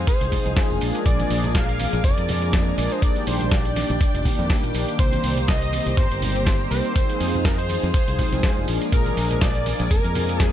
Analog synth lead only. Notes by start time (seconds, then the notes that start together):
0.07 C5
1.06 D5
1.55 F5
2.04 D5
2.78 D5
2.92 C5
3.02 D5
3.27 C5
3.52 D5
4.99 C5
5.48 D#5
5.97 C5
6.70 C5
7.44 A#4
7.58 C5
7.93 C5
8.93 A#4
9.42 D5
9.91 A#4
10.43 G#4